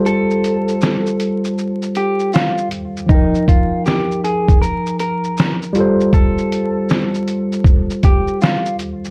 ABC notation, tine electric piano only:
X:1
M:4/4
L:1/8
Q:"Swing 16ths" 1/4=79
K:Gphr
V:1 name="Tine electric piano"
[G,F=Ac]6- [G,FAc] z | [F,EBg]6- [F,EBg] [G,F=Ac]- | [G,F=Ac]6- [G,FAc] z |]